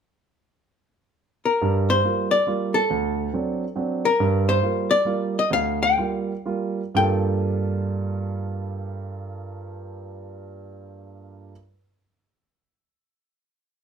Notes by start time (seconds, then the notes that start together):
1.45 A#4
1.62 G2 G3
1.90 C5
2.04 G3 A#3 F4
2.31 D5
2.47 G3 A#3 F4
2.74 A4
2.90 D2
3.34 F#3 C4 D4
3.76 F#3 C4 D4
4.05 A#4
4.20 G2 G3
4.49 C5
4.62 G3 A#3 F4
4.91 D5
5.05 G3 A#3 F4
5.39 D#5
5.50 D2 F5
5.83 G5
5.97 G3 A#3 F4
6.46 G3 A#3 F4
6.95 G2 G3 A#3 F4 A4 G5